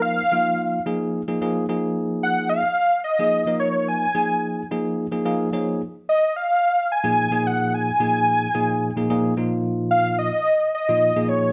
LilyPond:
<<
  \new Staff \with { instrumentName = "Analog synth lead" } { \time 7/8 \key f \phrygian \tempo 4 = 109 f''4. r2 | r8 ges''8 f''4 ees''4 des''8 | aes''4. r2 | r8 ees''8 f''4 aes''4 ges''8 |
aes''2. r8 | r8 f''8 ees''4 ees''4 des''8 | }
  \new Staff \with { instrumentName = "Tine electric piano" } { \time 7/8 \key f \phrygian <f bes ees' bes'>16 r16 <f bes ees' f'>8. r16 <f bes ees' aes'>8. <f bes ees' aes'>16 <f bes ees' aes'>8 <f bes ees' aes'>8~ | <f bes ees' aes'>4~ <f bes ees' aes'>16 r4 <f bes ees' aes'>8 <f bes ees' bes'>8.~ | <f bes ees' bes'>16 r16 <f bes ees' aes'>8. r16 <f bes ees' aes'>8. <f bes ees' aes'>16 <f bes ees' aes' f''>8 <f bes ees' aes' des''>8 | r2 r16 <bes, f bes ees' aes'>8 <bes, f bes ees' aes'>8.~ |
<bes, f bes ees' aes'>16 r16 <bes, f bes ees' aes'>8. r16 <bes, f bes ees' aes'>8. <bes, f bes ees' aes'>16 <bes, f bes ees' aes'>8 <bes, f bes ees' f'>8~ | <bes, f bes ees' f'>4~ <bes, f bes ees' f'>16 r4 <bes, f bes ees' f'>8 <bes, f bes ees' aes'>8. | }
>>